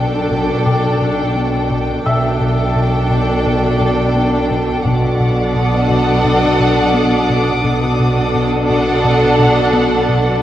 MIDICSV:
0, 0, Header, 1, 10, 480
1, 0, Start_track
1, 0, Key_signature, 2, "minor"
1, 0, Tempo, 697674
1, 1415, Time_signature, 4, 2, 24, 8
1, 7172, End_track
2, 0, Start_track
2, 0, Title_t, "Grand piano"
2, 0, Program_c, 0, 0
2, 0, Control_c, 0, 64, 127
2, 0, Note_on_c, 0, 88, 34
2, 457, Note_on_c, 0, 86, 33
2, 669, Note_off_c, 0, 88, 0
2, 1417, Note_on_c, 0, 88, 46
2, 1421, Note_on_c, 0, 76, 32
2, 1868, Note_off_c, 0, 86, 0
2, 2828, Note_off_c, 0, 88, 0
2, 2830, Note_off_c, 0, 76, 0
2, 3349, Control_c, 0, 64, 0
2, 3461, Control_c, 0, 64, 127
2, 7172, End_track
3, 0, Start_track
3, 0, Title_t, "Violin section"
3, 0, Program_c, 1, 48
3, 3335, Note_on_c, 1, 86, 46
3, 3812, Note_on_c, 1, 87, 47
3, 6906, Note_off_c, 1, 87, 0
3, 6907, Note_off_c, 1, 86, 0
3, 7172, End_track
4, 0, Start_track
4, 0, Title_t, "Violin section"
4, 0, Program_c, 2, 48
4, 0, Note_on_c, 2, 79, 38
4, 1384, Note_off_c, 2, 79, 0
4, 1403, Note_on_c, 2, 79, 44
4, 3301, Note_off_c, 2, 79, 0
4, 3335, Note_on_c, 2, 78, 60
4, 5227, Note_off_c, 2, 78, 0
4, 5245, Note_on_c, 2, 78, 56
4, 7142, Note_off_c, 2, 78, 0
4, 7172, End_track
5, 0, Start_track
5, 0, Title_t, "Violin section"
5, 0, Program_c, 3, 48
5, 0, Note_on_c, 3, 69, 37
5, 1386, Note_off_c, 3, 69, 0
5, 1416, Note_on_c, 3, 69, 45
5, 3308, Note_off_c, 3, 69, 0
5, 3336, Note_on_c, 3, 69, 54
5, 5228, Note_off_c, 3, 69, 0
5, 5252, Note_on_c, 3, 69, 60
5, 7146, Note_off_c, 3, 69, 0
5, 7172, End_track
6, 0, Start_track
6, 0, Title_t, "Viola section"
6, 0, Program_c, 4, 48
6, 0, Note_on_c, 4, 62, 39
6, 1388, Note_off_c, 4, 62, 0
6, 1417, Note_on_c, 4, 62, 45
6, 3308, Note_off_c, 4, 62, 0
6, 3332, Note_on_c, 4, 62, 54
6, 5226, Note_off_c, 4, 62, 0
6, 5254, Note_on_c, 4, 62, 64
6, 7147, Note_off_c, 4, 62, 0
6, 7172, End_track
7, 0, Start_track
7, 0, Title_t, "Analog synth bass"
7, 0, Program_c, 5, 38
7, 0, Note_on_c, 5, 47, 47
7, 121, Note_off_c, 5, 47, 0
7, 217, Note_on_c, 5, 47, 48
7, 360, Note_off_c, 5, 47, 0
7, 456, Note_on_c, 5, 47, 70
7, 600, Note_off_c, 5, 47, 0
7, 700, Note_on_c, 5, 47, 47
7, 842, Note_off_c, 5, 47, 0
7, 936, Note_on_c, 5, 59, 52
7, 1079, Note_off_c, 5, 59, 0
7, 1172, Note_on_c, 5, 47, 55
7, 1317, Note_off_c, 5, 47, 0
7, 1419, Note_on_c, 5, 47, 64
7, 1561, Note_off_c, 5, 47, 0
7, 1654, Note_on_c, 5, 47, 49
7, 1798, Note_off_c, 5, 47, 0
7, 1896, Note_on_c, 5, 47, 52
7, 2040, Note_off_c, 5, 47, 0
7, 2137, Note_on_c, 5, 47, 52
7, 2281, Note_off_c, 5, 47, 0
7, 2380, Note_on_c, 5, 47, 65
7, 2523, Note_off_c, 5, 47, 0
7, 2621, Note_on_c, 5, 47, 51
7, 2763, Note_off_c, 5, 47, 0
7, 2860, Note_on_c, 5, 59, 51
7, 3002, Note_off_c, 5, 59, 0
7, 3100, Note_on_c, 5, 47, 50
7, 3242, Note_off_c, 5, 47, 0
7, 3337, Note_on_c, 5, 47, 67
7, 3481, Note_off_c, 5, 47, 0
7, 3577, Note_on_c, 5, 47, 50
7, 3720, Note_off_c, 5, 47, 0
7, 3817, Note_on_c, 5, 47, 54
7, 3960, Note_off_c, 5, 47, 0
7, 4056, Note_on_c, 5, 47, 53
7, 4199, Note_off_c, 5, 47, 0
7, 4293, Note_on_c, 5, 47, 76
7, 4438, Note_off_c, 5, 47, 0
7, 4535, Note_on_c, 5, 47, 54
7, 4679, Note_off_c, 5, 47, 0
7, 4775, Note_on_c, 5, 59, 57
7, 4919, Note_off_c, 5, 59, 0
7, 5019, Note_on_c, 5, 47, 51
7, 5162, Note_off_c, 5, 47, 0
7, 5256, Note_on_c, 5, 47, 69
7, 5400, Note_off_c, 5, 47, 0
7, 5500, Note_on_c, 5, 47, 47
7, 5642, Note_off_c, 5, 47, 0
7, 5743, Note_on_c, 5, 47, 55
7, 5885, Note_off_c, 5, 47, 0
7, 5984, Note_on_c, 5, 47, 50
7, 6125, Note_off_c, 5, 47, 0
7, 6222, Note_on_c, 5, 47, 74
7, 6364, Note_off_c, 5, 47, 0
7, 6461, Note_on_c, 5, 47, 49
7, 6603, Note_off_c, 5, 47, 0
7, 6698, Note_on_c, 5, 59, 53
7, 6841, Note_off_c, 5, 59, 0
7, 6941, Note_on_c, 5, 47, 48
7, 7083, Note_off_c, 5, 47, 0
7, 7172, End_track
8, 0, Start_track
8, 0, Title_t, "Cello section"
8, 0, Program_c, 6, 48
8, 0, Note_on_c, 6, 47, 40
8, 1386, Note_off_c, 6, 47, 0
8, 1409, Note_on_c, 6, 47, 47
8, 3304, Note_off_c, 6, 47, 0
8, 3332, Note_on_c, 6, 47, 58
8, 5226, Note_off_c, 6, 47, 0
8, 5254, Note_on_c, 6, 47, 58
8, 7147, Note_off_c, 6, 47, 0
8, 7172, End_track
9, 0, Start_track
9, 0, Title_t, "Double bass section"
9, 0, Program_c, 7, 48
9, 0, Note_on_c, 7, 35, 38
9, 1384, Note_off_c, 7, 35, 0
9, 1414, Note_on_c, 7, 35, 43
9, 3307, Note_off_c, 7, 35, 0
9, 3331, Note_on_c, 7, 35, 52
9, 5225, Note_off_c, 7, 35, 0
9, 5250, Note_on_c, 7, 35, 51
9, 7145, Note_off_c, 7, 35, 0
9, 7172, End_track
10, 0, Start_track
10, 0, Title_t, "Taiko and cinematic ensemble drums"
10, 212, Note_on_c, 9, 41, 33
10, 281, Note_off_c, 9, 41, 0
10, 3334, Note_on_c, 9, 41, 50
10, 3403, Note_off_c, 9, 41, 0
10, 7172, End_track
0, 0, End_of_file